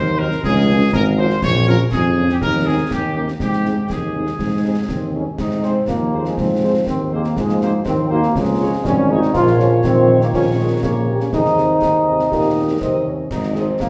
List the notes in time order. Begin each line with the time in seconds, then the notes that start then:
Already playing: D#2 C5
0.18 F#3 C4 D#4 A#4
0.31 snare
0.42 C#2 G#4, concert bass drum, snare
0.68 F3 C#4 F4
0.92 G#1 A#4, concert bass drum, snare
1.18 F3 C#4 F4 C5
1.30 snare
1.42 A#1 C#5, concert bass drum, snare, crash
1.55 snare
1.67 F3 C#4 F4 A#4, snare
1.91 F2 G#4, concert bass drum, snare
2.17 F3 C#4 F4
2.29 G4, snare
2.41 D#2 A#4, concert bass drum, snare
2.66 G#3 C4 D#4 G#4
2.91 D#2 G4, concert bass drum, snare
3.15 A#3 C#4 D#4 G4
3.28 snare
3.40 G#2 G4, concert bass drum, snare
3.53 snare
3.65 G#3 C4 D#4, snare
3.90 D#2 G#4, concert bass drum, snare
4.15 G#3 C4 D#4
4.27 snare
4.39 G#2, concert bass drum, snare
4.63 G#3 C4 D#4
4.88 D#2 C4, concert bass drum, snare
5.14 G#3 C4 C#4 D#4
5.38 G#2 C3 D#4, concert bass drum, snare, crash
5.51 snare
5.63 C4 D#4 G#4 C5, snare
5.88 D#2 F3 A#3, concert bass drum, snare
6.13 D#4 G#4 C5
6.25 G#3, snare
6.37 G#2 C4, concert bass drum, snare
6.62 D#4 G#4 C5
6.87 D#2 D#3 C4, concert bass drum, snare
7.11 A#3 D#4 G#4 C5
7.24 snare
7.36 G#2 F3 G#3, concert bass drum, snare
7.49 snare
7.61 A#3 D#4 F#4 G#4 C5, snare
7.86 D#2 D#3 C4, concert bass drum, snare
8.10 A#3 D#4 F#4 G#4 C5
8.23 snare
8.35 C#2 F3 G#3, concert bass drum, snare
8.60 F4 G#4 C#5
8.85 G#1 G3 C#4, concert bass drum, snare
9.09 D#4 F4 G#4 C#5
9.22 snare
9.34 A#1 F3 F4 A#4 C#5, concert bass drum, snare, crash
9.47 snare
9.59 C#4, snare
9.84 A#1 D#3 C4, concert bass drum, snare
10.21 A#3, snare
10.33 A#1 C#4 F4 A#4 C#5, concert bass drum, snare
10.58 G#3
10.83 A#1 C#3 A#3 F4 A#4 C#5, concert bass drum, snare
11.09 G4
11.20 C#4, snare
11.31 D#2 C3 D#4 G#4 C5 D#5, concert bass drum, snare
11.45 snare
11.58 snare
11.82 D#2 D#3, concert bass drum, snare
12.07 C3
12.19 snare
12.31 D#2 A#2 D#4 G4 A#4 D#5, concert bass drum, snare
12.70 G#2
12.81 D#2 C3 C4 D#4 G4 A#4 D#5, concert bass drum, snare
13.06 C#4
13.30 G#1 D#4, concert bass drum, snare, crash
13.43 snare
13.55 C4 D#4 G#4 C5 D#5, snare
13.80 D#2 A#3 C4, concert bass drum, snare